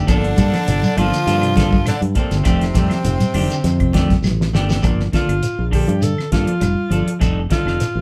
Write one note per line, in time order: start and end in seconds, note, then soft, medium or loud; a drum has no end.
0.07 0.33 G1 medium
0.07 0.99 D3 medium
0.07 1.00 D3 medium
0.07 0.26 F3 medium
0.07 0.34 F3 medium
0.07 0.26 A#3 medium
0.07 0.26 D4 medium
0.07 1.00 D4 loud
0.07 0.26 A4 medium
0.07 kick loud
0.07 closed hi-hat medium
0.07 claves medium
0.07 shekere medium
0.24 closed hi-hat soft
0.37 0.51 G2 medium
0.37 0.51 G3 medium
0.37 0.56 A#3 medium
0.37 0.56 D4 medium
0.37 0.57 A4 medium
0.37 muted clean electric guitar stroke medium
0.37 kick medium
0.37 closed hi-hat medium
0.37 high conga loud
0.37 shekere medium
0.53 0.65 F3 medium
0.53 snare soft
0.53 closed hi-hat soft
0.53 claves medium
0.53 shekere soft
0.67 0.81 G1 loud
0.67 0.93 C3 medium
0.67 closed hi-hat medium
0.67 high conga soft
0.67 shekere medium
0.82 high conga medium
0.82 shekere medium
0.97 1.11 G1 medium
0.97 1.11 D3 medium
0.97 1.15 F3 medium
0.97 1.86 F3 medium
0.97 1.87 F3 loud
0.97 1.16 A#3 medium
0.97 1.16 D4 medium
0.97 1.87 F4 loud
0.97 1.16 A4 medium
0.97 closed hi-hat medium
0.97 high conga medium
0.97 low conga medium
0.97 claves medium
0.97 shekere soft
1.12 1.38 D3 medium
1.12 closed hi-hat soft
1.12 shekere medium
1.27 1.90 G2 loud
1.27 1.45 F3 medium
1.27 1.45 A#3 medium
1.27 1.46 D4 medium
1.27 1.46 A4 medium
1.27 snare soft
1.27 closed hi-hat medium
1.27 shekere medium
1.41 1.54 C3 medium
1.41 closed hi-hat soft
1.41 claves medium
1.56 1.83 D3 medium
1.56 1.74 F3 medium
1.56 1.75 A#3 medium
1.56 1.75 D4 medium
1.56 1.75 A4 medium
1.56 kick medium
1.56 snare medium
1.56 closed hi-hat medium
1.56 high conga loud
1.71 kick medium
1.71 high conga medium
1.71 shekere soft
1.86 2.00 D3 medium
1.86 2.02 D3 medium
1.86 2.01 D4 medium
1.86 snare soft
1.86 closed hi-hat medium
1.86 claves medium
1.86 shekere medium
2.01 2.13 G2 medium
2.01 closed hi-hat soft
2.01 high conga medium
2.15 4.20 C3 medium
2.15 4.21 C3 medium
2.15 2.34 F3 medium
2.15 2.34 A#3 medium
2.15 4.21 C4 medium
2.15 2.34 D4 medium
2.15 2.35 A4 medium
2.15 muted fingered electric bass stroke soft
2.15 kick medium
2.15 closed hi-hat medium
2.15 low conga medium
2.15 shekere soft
2.31 2.43 G1 medium
2.31 2.44 D3 medium
2.31 snare soft
2.31 closed hi-hat soft
2.31 low conga medium
2.31 shekere medium
2.43 2.71 F1 medium
2.43 2.63 D#3 medium
2.43 2.72 F3 medium
2.43 2.63 A3 medium
2.43 2.63 D4 medium
2.43 2.64 G4 medium
2.43 kick medium
2.43 snare soft
2.43 closed hi-hat medium
2.43 claves medium
2.43 shekere medium
2.61 snare soft
2.61 closed hi-hat soft
2.74 2.89 F2 medium
2.74 2.93 D#3 medium
2.74 2.89 G3 medium
2.74 2.93 A3 medium
2.74 2.93 D4 medium
2.74 2.94 G4 medium
2.74 kick medium
2.74 snare soft
2.74 closed hi-hat medium
2.74 high conga medium
2.74 shekere medium
2.90 3.03 F3 medium
2.90 snare soft
2.90 closed hi-hat soft
2.90 claves medium
2.90 shekere soft
3.04 3.18 F1 medium
3.04 3.30 C3 medium
3.04 closed hi-hat medium
3.04 high conga soft
3.04 shekere medium
3.19 closed hi-hat soft
3.19 high conga medium
3.19 shekere medium
3.34 3.48 F1 medium
3.34 3.48 D3 medium
3.34 3.53 D#3 medium
3.34 3.53 D4 medium
3.34 3.54 G4 medium
3.34 muted clean electric guitar stroke medium
3.34 open hi-hat medium
3.34 high conga medium
3.34 low conga medium
3.34 claves medium
3.34 shekere soft
3.50 3.76 D3 medium
3.50 closed hi-hat soft
3.50 shekere medium
3.64 4.14 F2 loud
3.64 snare soft
3.64 closed hi-hat medium
3.64 shekere medium
3.80 3.92 C3 medium
3.80 kick medium
3.80 closed hi-hat soft
3.80 claves medium
3.93 4.20 D3 medium
3.93 4.12 D#3 medium
3.93 4.12 A3 medium
3.93 4.13 D4 medium
3.93 4.13 G4 medium
3.93 kick medium
3.93 snare medium
3.93 closed hi-hat medium
3.93 high conga loud
4.08 kick medium
4.08 snare soft
4.08 closed hi-hat soft
4.08 high conga medium
4.08 shekere soft
4.22 4.50 A1 medium
4.22 snare medium
4.22 high conga medium
4.22 claves medium
4.22 shekere medium
4.41 snare medium
4.53 4.80 G1 medium
4.53 4.69 D#3 medium
4.53 4.70 A3 medium
4.53 4.69 D4 medium
4.53 4.68 G4 medium
4.53 snare medium
4.53 shekere soft
4.68 4.81 D3 medium
4.68 4.82 A3 soft
4.68 4.81 D4 soft
4.68 4.83 G4 medium
4.68 snare medium
4.68 low conga medium
4.68 shekere medium
4.82 5.09 G1 medium
4.82 5.09 F3 medium
4.82 5.01 F3 medium
4.82 5.01 A#3 medium
4.82 5.01 D4 medium
4.82 muted clean electric guitar stroke medium
4.82 kick medium
4.82 closed hi-hat medium
4.82 claves medium
4.82 shekere medium
5.00 snare soft
5.13 5.39 D3 medium
5.13 5.31 F3 medium
5.13 5.32 A#3 medium
5.13 5.32 D4 medium
5.13 5.69 F4 medium
5.13 5.32 A4 medium
5.13 muted fingered electric bass stroke soft
5.13 kick medium
5.13 snare medium
5.13 closed hi-hat medium
5.13 shekere soft
5.29 5.40 G1 medium
5.29 closed hi-hat medium
5.29 claves medium
5.43 closed hi-hat medium
5.43 shekere medium
5.59 5.83 A#1 medium
5.71 5.86 D3 medium
5.71 5.90 F3 medium
5.71 5.90 A#3 medium
5.71 5.91 D4 medium
5.71 6.04 G4 medium
5.71 5.91 A4 medium
5.71 kick medium
5.71 open hi-hat medium
5.71 claves medium
5.71 shekere soft
5.87 6.13 G2 medium
5.87 6.00 F3 medium
5.87 closed hi-hat medium
6.01 6.28 D3 medium
6.01 6.32 A4 medium
6.01 closed hi-hat medium
6.01 shekere medium
6.18 snare soft
6.18 claves medium
6.32 6.45 G2 medium
6.32 6.50 F3 medium
6.32 6.51 A#3 medium
6.32 6.51 D4 medium
6.32 7.17 F4 medium
6.32 6.51 A4 medium
6.32 kick medium
6.32 snare medium
6.32 closed hi-hat medium
6.32 shekere soft
6.47 6.60 F3 medium
6.47 closed hi-hat medium
6.60 6.75 F1 medium
6.60 6.87 G3 medium
6.60 closed hi-hat medium
6.60 claves medium
6.60 shekere medium
6.90 7.04 G1 loud
6.90 7.04 F3 medium
6.90 7.10 F3 medium
6.90 7.10 D4 medium
6.90 7.10 A4 medium
6.90 closed hi-hat medium
6.90 shekere soft
7.06 7.19 F3 medium
7.06 muted fingered electric bass stroke soft
7.06 closed hi-hat medium
7.20 7.46 F1 medium
7.20 7.46 F3 medium
7.20 7.39 G3 medium
7.20 7.39 D4 medium
7.20 7.39 D#4 medium
7.20 7.39 A4 medium
7.20 kick medium
7.20 closed hi-hat medium
7.20 claves medium
7.20 shekere medium
7.50 7.76 D3 medium
7.50 7.66 G3 soft
7.50 7.66 D4 medium
7.50 7.66 D#4 medium
7.50 8.01 F4 medium
7.50 7.66 A4 medium
7.50 kick medium
7.50 snare medium
7.50 closed hi-hat soft
7.50 shekere soft
7.66 7.78 F1 medium
7.66 7.84 D4 soft
7.66 7.84 D#4 soft
7.66 7.84 A4 soft
7.66 snare soft
7.66 claves medium
7.80 snare soft
7.80 closed hi-hat medium
7.80 shekere medium
7.95 8.01 A1 medium